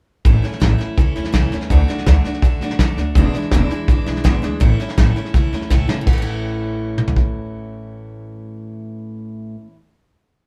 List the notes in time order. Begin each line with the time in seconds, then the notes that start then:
0.25 A1 A2 E3 A3 C#4 E4, kick, snare
0.42 A3 C#4 E4, muted upright bass stroke, snare
0.52 snare
0.60 A1 A2 E3 A3 C#4 E4, kick, snare, hi-hat pedal
0.78 A3 C#4 E4, muted upright bass stroke, snare
0.98 C#2 E3 A3 C#4 E4, kick, snare
1.16 E2 A3 C#4 E4, snare
1.24 snare
1.32 C#2 A2 E3 A3 C#4 E4, kick, snare, hi-hat pedal
1.52 E2 A3 C#4 E4, snare
1.61 snare
1.70 D2 D3 A3 D4 F#4, kick, snare
1.88 A3 D4 F#4, muted upright bass stroke, snare
1.98 snare
2.06 D2 D3 A3 D4 F#4, kick, snare, hi-hat pedal
2.24 A3 D4 F#4, muted upright bass stroke, snare
2.34 snare
2.42 F#2 D3 A3 D4, kick, snare
2.46 F#4
2.59 A2 F#4, snare
2.64 A3 D4
2.70 snare
2.79 F#2 D3 A3 D4 F#4, kick, snare, hi-hat pedal
2.97 D2 A3 D4 F#4, snare
3.15 E1 E2 B2 E3 G#3 D4 E4, kick, snare
3.33 E3 G#3 D4 E4, snare
3.42 snare
3.51 E1 E2 B2 E3 G#3 D4 E4, kick, snare, hi-hat pedal
3.69 G#3 D4 E4, muted upright bass stroke, snare
3.74 E3
3.88 G#1 E3 G#3 D4 E4, kick, snare
4.06 B1 E3 G#3 D4 E4, snare
4.16 snare
4.24 G#1 E2 B2 E3 G#3 D4 E4, kick, snare, hi-hat pedal
4.42 D2 E3 G#3 D4 E4, snare
4.60 A1 A2 E3 A3 C#4 E4, kick, snare
4.79 A3 C#4 E4, muted upright bass stroke, snare
4.89 snare
4.98 A1 A2 E3 A3 C#4 E4, kick, snare, hi-hat pedal
5.16 A3 C#4 E4, muted upright bass stroke, snare
5.25 snare
5.34 C#2 E3 A3 C#4 E4, kick, snare
5.52 E2 A3 C#4 E4, snare
5.62 snare
5.70 C#2 A2 E3 A3 C#4 E4, kick, snare, hi-hat pedal
5.88 F#1 A3 C#4 E4, snare
6.01 A2
6.07 A1 E3, kick, crash
6.13 A3
6.18 C#4
6.22 E4
6.98 mid tom
7.08 floor tom
7.16 kick